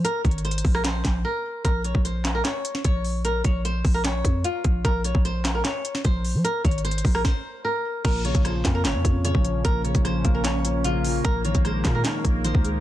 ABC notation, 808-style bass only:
X:1
M:4/4
L:1/16
Q:1/4=150
K:Bbm
V:1 name="808-style bass" clef=bass
z2 A,,,4 B,,,4 B,,,2 z4 | B,,,3 B,,,4- B,,, z4 B,,,4- | B,,,2 B,,,4 B,,,4 F,,2 z2 B,,,2 | B,,,3 B,,,4- B,,, z4 B,,,3 F, |
z2 A,,,4 B,,,2 z8 | B,,,3 B,,,3 F,,2 A,,, F,, F,,3 B,,,3 | B,,,3 B,,,3 B,,,8- B,,,2 | B,,,3 B,,,3 B,,2 z2 B,,,3 D,,3 |]